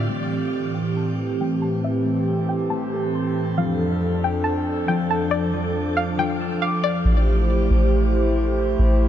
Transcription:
Already playing: harp C4 G4 E5
0.09 analog synth pad A2 E3 C4 G4, harp A3, synth pluck E5
0.32 harp A4
0.74 synth pluck G5
0.96 harp A4, synth pluck A5
1.41 harp A3, synth pluck G5
1.62 synth pluck A5
1.84 synth pluck E5
2.06 harp A3
2.49 synth pluck G5
2.70 harp A3, synth pluck A5
2.93 harp A4
3.15 harp C6
3.57 analog synth pad F2 F3 D4 A4, harp F3, synth pluck F5
3.79 harp A4
4.24 synth pluck G5
4.44 harp A4, synth pluck A5
4.88 harp F3, synth pluck G5
5.10 synth pluck A5
5.31 synth pluck D5
5.53 harp F3
5.97 synth pluck F5
6.18 harp F3, synth pluck G5
6.40 harp A4
6.62 synth pluck F5, harp D6
6.84 synth pluck D5
7.05 808-style bass A1, analog synth pad A3 E4 G4 C5
7.71 808-style bass A1
8.79 808-style bass A1

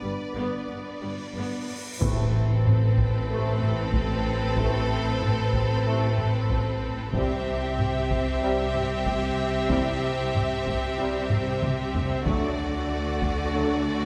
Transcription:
Already playing: french horn section B3 D4, violin section B4 D5, cymbal swell
0.02 double bass section G1, cello section G2, viola section G3
0.35 double bass section G1, cello section G2, viola section B3
0.69 double bass section G1, cello section G2, viola section B3
1.01 double bass section G1, cello section G2, viola section G3
1.34 double bass section G1, cello section G2, viola section B3
2.00 double bass section A1, cello section A2, timpani A2, trombone section C3 A3, viola section C4, french horn section E4 B4, violin section A4 B4, taiko, impact
2.66 taiko low-mid
2.98 taiko
3.29 trombone section C3 A3, french horn section E4 B4
3.62 taiko low-mid
3.94 taiko
4.56 french horn section E4 B4, taiko
4.61 trombone section C3 A3
5.22 taiko low-mid
5.53 taiko
5.86 trombone section C3 A3, french horn section E4 B4
6.18 taiko low-mid
6.50 taiko
7.13 double bass section C2, cello section C3, trombone section C3 G3, viola section C4, french horn section C4 E4, violin section G4 E5, taiko
7.79 taiko low-mid
8.11 taiko
8.41 trombone section C3 G3, french horn section C4 E4
8.75 taiko low-mid
9.06 taiko
9.68 trombone section C3 G3, french horn section C4 E4, taiko
10.35 taiko low-mid
10.66 taiko
10.97 trombone section C3 G3, french horn section C4 E4
11.30 taiko low-mid
11.62 taiko mid
11.95 taiko low
12.23 double bass section D2, trombone section D3 F#3, cello section D3, french horn section A3 D4, viola section A3, violin section F#4 D5, taiko
13.21 taiko
13.53 trombone section D3 F#3, french horn section A3 D4

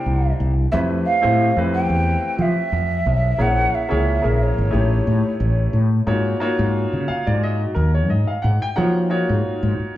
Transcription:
Already playing: grand piano A#3 D4 E4 G4 C5, flute G5
0.06 fretless electric bass C2
0.40 fretless electric bass C2
0.72 fretless electric bass F2, grand piano A3 C4 E4 G4 B4, flute E5
1.06 flute F5
1.22 fretless electric bass A2, grand piano A3 C4 E4 G4 C5
1.56 fretless electric bass F2, grand piano A3 C4 E4 G4 B4
1.74 flute G5
1.89 fretless electric bass E2
2.38 fretless electric bass F3, flute E5
2.72 fretless electric bass F2
3.06 fretless electric bass B1
3.38 fretless electric bass A#1, grand piano A#3 C#4 E4 G#4 C#5, flute F#5
3.75 flute E5
3.89 fretless electric bass C#2, grand piano A#3 C#4 E4 G#4 C#5
4.22 fretless electric bass A#1, grand piano A#3 C#4 E4 G#4 A#4
4.43 flute C#5
4.58 fretless electric bass G#1
4.71 fretless electric bass A1, grand piano A3 D#4 E4 G4 C#5
5.07 fretless electric bass A2
5.40 fretless electric bass A1
5.73 fretless electric bass A2
6.07 fretless electric bass G#2, grand piano A#3 D#4 F4 F#4 C#5
6.40 grand piano A#3 D#4 F4 F#4 C#5
6.59 fretless electric bass G#2
6.93 fretless electric bass C#3
7.08 grand piano F5, muted fretless electric bass stroke
7.27 fretless electric bass G#2, grand piano D5
7.43 grand piano D#5
7.61 grand piano F#4
7.75 fretless electric bass D#2, grand piano A#4
7.94 grand piano C#5
8.10 fretless electric bass G#2, grand piano D#5
8.27 grand piano F5
8.42 fretless electric bass G#2, grand piano F#5
8.62 grand piano G5
8.76 fretless electric bass F3, grand piano A#3 D#4 F4 F#4 C#5 F#5
9.10 grand piano A#3 D#4 F4 F#4 C#5
9.29 fretless electric bass G#2
9.63 fretless electric bass G#2
9.79 muted fretless electric bass stroke

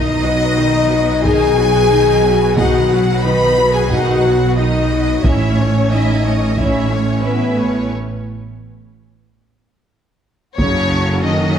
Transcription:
Already playing: double bass section B1, cello section B2, viola section D#3 D#4, french horn section D#4, violin section D#5
0.23 viola section F#3 F#4, violin section B4
0.56 viola section D#3 D#4, violin section D#5
0.91 viola section F#3 F#4, violin section B4
1.23 viola section D#3 D#4, french horn section G#4, violin section D#5 G#5, taiko
1.57 viola section F#3 F#4, violin section B4
1.90 viola section D#3 D#4, violin section D#5
2.23 viola section F#3 F#4, violin section B4
2.56 viola section D#3 D#4, french horn section F#4, violin section D#5 F#5, taiko
2.89 viola section F#3 F#4, violin section B4
3.23 viola section D#3 D#4, french horn section B4, violin section D#5 B5
3.58 viola section F#3 F#4, violin section B4
3.73 french horn section G#4, violin section G#5
3.89 viola section D#3 D#4, french horn section F#4, violin section D#5 F#5, taiko
4.23 viola section F#3 F#4, violin section B4
4.56 viola section D#3 D#4, french horn section D#4, violin section D#5
4.90 viola section F#3 F#4, violin section B4
5.23 double bass section A1, cello section A2, french horn section C#4, viola section C#4 E4, violin section C#5 E5, taiko
5.57 viola section A3 C#4, violin section C#5
5.91 viola section C#4 E4, french horn section D#4, violin section D#5 E5
6.25 viola section A3 C#4, violin section C#5
6.57 french horn section C#4, viola section C#4 E4, violin section C#5 E5, taiko
6.90 viola section A3 C#4, violin section C#5
7.24 french horn section B3, viola section C#4 E4, violin section B4 E5
7.57 viola section A3 C#4, violin section C#5
10.57 tuba F#1, double bass section F#2, cello section C#3, french horn section F#3 C#4, viola section F#3 C#4, violin section F#4 A4 C#5, taiko
11.24 cello section D#3, violin section D#5

